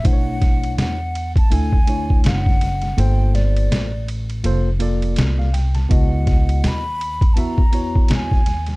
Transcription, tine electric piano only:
0.04 0.95 A3 medium
0.04 0.96 D4 medium
0.04 0.96 E4 medium
0.04 0.13 C5 medium
0.13 1.00 C#5 medium
1.50 1.75 A3 medium
1.50 1.76 D4 medium
1.50 1.76 E4 medium
1.50 1.77 A4 medium
1.87 2.55 A3 medium
1.87 2.55 D4 medium
1.87 2.56 E4 medium
1.87 2.56 C#5 medium
2.97 3.88 A#3 medium
2.97 3.89 F4 medium
2.97 3.89 A4 medium
2.97 3.89 C5 medium
4.43 4.68 A#3 medium
4.43 4.69 F4 medium
4.43 4.69 A4 medium
4.43 4.70 C5 loud
4.80 5.47 A#3 medium
4.80 5.48 F4 medium
4.80 5.48 A4 medium
4.80 5.49 D5 medium
5.39 5.53 F5 medium
5.54 5.74 G5 medium
5.75 6.10 A5 medium
5.89 6.80 B3 medium
5.89 6.81 E4 medium
5.89 6.81 F#4 medium
5.89 6.82 D#5 medium
7.36 7.61 B3 medium
7.36 7.61 E4 medium
7.36 7.62 F#4 medium
7.36 7.62 E5 medium
7.72 8.40 B3 medium
7.72 8.41 E4 medium
7.72 8.41 F#4 medium
7.72 8.41 C#5 medium

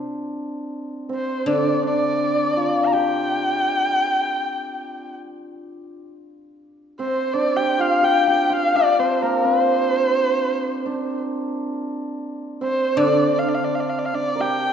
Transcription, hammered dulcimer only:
0.00 1.09 C4 medium
0.00 1.46 D4 medium
0.00 0.27 F4 medium
1.09 5.09 C4 medium
1.46 1.83 D4 medium
1.83 5.56 D4 medium
2.57 5.93 F4 medium
2.93 6.07 G4 medium
6.99 8.99 C4 medium
7.34 8.74 D4 medium
7.56 8.02 G4 medium
7.79 8.50 F4 medium
8.02 8.27 G4 medium
8.27 11.41 G4 medium
8.50 11.87 F4 medium
8.75 10.85 D4 medium
8.99 9.44 C4 medium
9.22 13.51 A#3 medium
9.45 12.61 C4 medium
10.86 12.96 D4 medium
12.61 14.73 C4 medium
12.96 14.13 D4 medium
14.14 14.73 D4 medium
14.35 14.73 A#4 medium
14.40 14.73 G4 medium

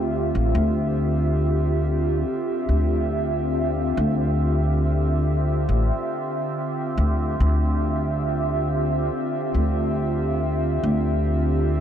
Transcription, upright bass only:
0.00 0.31 D2 medium
0.35 0.52 A1 medium
0.55 2.22 D2 medium
2.69 3.94 D2 medium
3.97 5.65 D2 medium
5.69 5.89 A1 medium
6.98 7.36 D2 medium
7.40 9.08 D2 medium
9.54 10.79 D2 medium
10.84 11.80 D2 medium

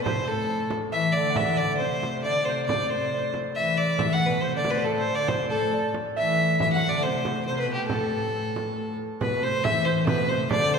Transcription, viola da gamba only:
0.07 0.31 C3 medium
0.29 0.73 A2 medium
0.92 1.14 E3 medium
1.15 1.39 D3 medium
1.38 1.60 E3 medium
1.59 1.81 D3 medium
1.80 2.26 C3 medium
2.25 2.45 D3 medium
2.45 2.71 C3 medium
2.69 2.90 D3 medium
2.90 3.31 C3 medium
3.55 3.96 E3 medium
3.99 4.26 E3 medium
4.28 4.42 B2 medium
4.42 4.58 C3 medium
4.57 4.73 D3 medium
4.72 4.78 B2 medium
4.79 4.87 B2 medium
4.85 5.14 A2 medium
5.14 5.31 D3 medium
5.29 5.52 C3 medium
5.52 5.93 A2 medium
6.18 6.58 E3 medium
6.61 6.78 E3 loud
6.76 6.90 F#3 medium
6.91 7.08 D3 medium
7.06 7.49 C3 medium
7.50 7.67 C3 medium
7.66 7.92 B2 medium
7.93 8.97 A2 medium
9.20 9.44 B2 medium
9.43 9.63 C3 medium
9.63 10.08 E3 medium
10.07 10.29 B2 medium
10.30 10.40 C3 medium
10.50 10.79 D3 loud

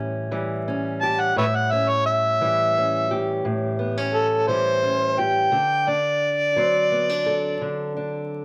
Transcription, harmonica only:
1.02 1.21 A5 medium
1.20 1.35 F#5 medium
1.38 1.45 B4 medium
1.38 1.45 C#5 medium
1.38 1.57 E5 medium
1.55 1.73 F#5 medium
1.71 1.90 E5 medium
1.89 2.05 C#5 medium
2.06 3.41 E5 medium
4.13 4.47 A4 medium
4.47 5.21 C5 medium
5.20 5.90 G5 medium
5.89 7.93 D5 medium

